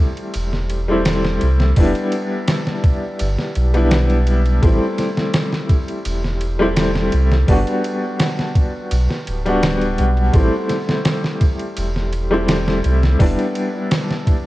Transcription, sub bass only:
0.35 E1
1.42 C2
1.77 E1
3.21 G1
3.57 B1
4.63 A1
6.06 E1
7.14 C2
7.49 G1
8.92 B1
9.28 D1
10.00 B1
10.34 A1
11.78 E1
12.85 C2
13.20 E1

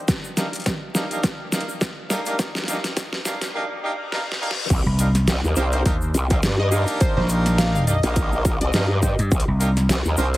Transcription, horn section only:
0.37 A#3 D4 D#4 G4 A#4
0.95 A#3 D4 D#4 G4 A#4
1.11 A#3 D4 D#4 G4 A#4
1.52 A#3 D4 D#4 G4 A#4
2.10 A#3 D4 D#4 G4 A#4
2.26 A#3 D4 D#4 G4 A#4
2.68 A#3 D4 D#4 G4 A#4
3.26 A#3 D4 D#4 G4 A#4
3.55 A#3 D4 D#4 G4 A#4
3.83 A#3 D4 D#4 G4 A#4
4.12 A#3 D4 D#4 G4 A#4
4.41 A#3 D4 D#4 G4 A#4
4.99 A#3 D4 D#4 G4 A#4
5.56 A#3 D4 D#4 G4 A#4
5.73 A#3 D4 D#4 G4 A#4
5.85 A#3 D4 D#4 G4 A#4
6.30 A#3 D4 D#4 G4 A#4
6.72 A#3 D4 D#4 G4 A#4
7.29 A#3 D4 D#4 G4 A#4
7.87 A#3 D4 D#4 G4 A#4
8.03 A#3 D4 D#4 G4 A#4
8.45 A#3 D4 D#4 G4 A#4
8.74 A#3 D4 D#4 G4 A#4
9.02 C4 D4 D#4 G4 C5
9.60 A#3 D4 D#4 G4 A#4
10.18 A#3 D4 D#4 G4 A#4
10.34 A#3 D4 D#4 G4 A#4

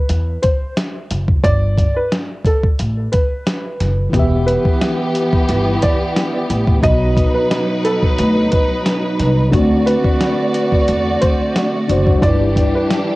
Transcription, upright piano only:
Already playing: B4
0.42 C5
1.44 D5
1.96 B4
2.46 A4
3.12 B4
4.46 B4
5.83 D5
6.84 D#5
7.34 B4
7.85 A4
8.52 B4
9.86 B4
11.21 C5
12.22 D5
12.75 B4

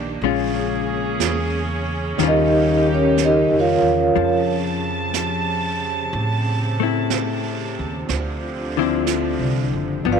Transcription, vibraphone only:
2.28 D#4 G4 A#4 D#5
2.94 C#4 G4 A#4 C#5
3.25 D#4 G4 A#4 D#5
3.59 F4 A#4 C#5 F5
10.12 F4 B4 D5 F5

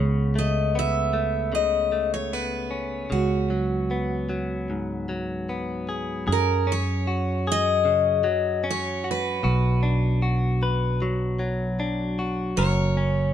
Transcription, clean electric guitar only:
Already playing: C#3 B3
0.35 A3
0.75 B3
1.13 A3
1.52 C#3
1.92 A3
2.33 B3
2.71 C#4
3.10 C#3
3.50 F#3
3.91 B3
4.29 F#3
4.70 G#2
5.09 F#3
5.49 B3
5.89 G#4
6.27 F#2 G#4
6.67 C#4
7.07 F#4
7.47 G#4
7.85 C#3
8.24 F#3
8.64 C#4
9.04 F#4
9.43 B2 F#4
9.83 D4
10.22 F#4
10.63 B4
11.02 F#3
11.39 F#3
11.80 D4
12.19 F#4
12.58 F#2 A#4
12.97 C#4

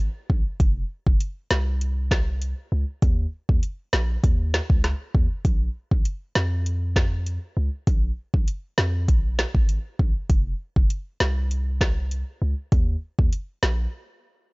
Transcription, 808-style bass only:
0.30 A#1
0.60 F1
1.07 F1
1.51 C2
2.72 C#2
3.02 D#2
3.49 D#2
3.93 A#1
4.24 D#2
4.70 C#2
5.15 D#2
5.45 A#1
5.91 A#1
6.36 F2
7.57 C#2
7.87 A#1
8.34 A#1
8.78 F2
9.08 A#1
9.55 G#1
9.99 A#1
10.30 F1
10.76 F1
11.21 C2
12.42 C#2
12.72 D#2
13.19 D#2
13.63 A#1

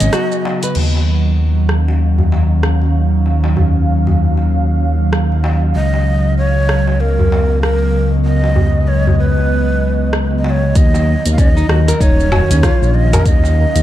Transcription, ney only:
Already playing: D#5
5.76 D#5
6.38 C#5
7.00 A#4
7.63 A#4
8.25 D#5
8.88 C#5
9.19 B4
10.38 D#5
10.45 D#5
10.50 C#5
10.77 D#5
11.32 F5
11.39 D#5
12.01 C#5
12.95 D#5
13.26 D#5

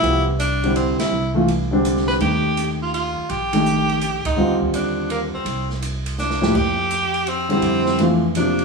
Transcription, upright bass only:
0.03 C2
1.00 muted upright bass stroke
1.12 C2
2.20 D#2
3.17 muted upright bass stroke
3.30 A#1
4.25 muted upright bass stroke
4.38 D#2
5.34 muted upright bass stroke
5.45 C2
6.55 F2
7.62 F2

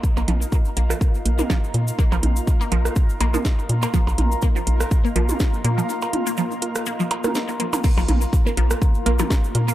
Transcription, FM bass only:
0.17 A#1
0.28 A#1
0.77 A#1
1.25 A#1
1.74 A#2
2.12 A#1
2.23 A#1
2.72 A#1
3.21 A#1
3.69 A#2
4.07 A#1
4.18 A#1
4.67 A#1
5.16 A#1
5.64 A#2
7.98 A#1
8.09 A#1
8.57 A#1
9.06 A#1
9.55 A#2

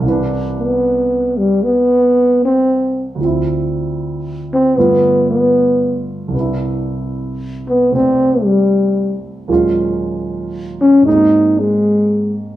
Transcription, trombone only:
0.59 B3
1.37 G3
1.63 B3
2.45 C4
4.54 C4
4.77 B3
5.31 B3
7.68 B3
7.94 C4
8.43 G3
10.81 C#4
11.06 D#4
11.59 G#3

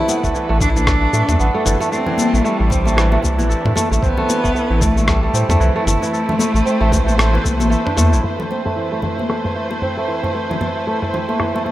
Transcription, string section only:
Already playing: G3 D4 A4 B4
1.92 C3 E4
4.02 D3 A3
6.12 B4 C5
8.24 A3 E4 B4 C5

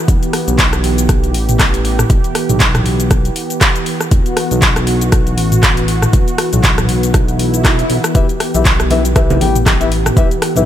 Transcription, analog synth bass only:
0.08 E1
0.48 B1
1.34 A1
2.10 E1
2.49 B1
4.12 E1
4.51 B1
5.38 A1
6.13 E1
6.53 B1
7.14 B1
7.90 B1
8.15 E1
8.55 B1
9.41 A1
10.17 E1
10.56 B1

